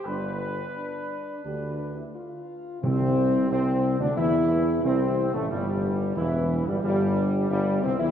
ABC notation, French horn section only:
X:1
M:4/4
L:1/16
Q:1/4=90
K:C
V:1 name="French horn section"
[DG]2 z2 D4 D3 E F4 | C4 C3 D E4 C3 A, | G,4 E,3 G, G,4 G,2 C E |]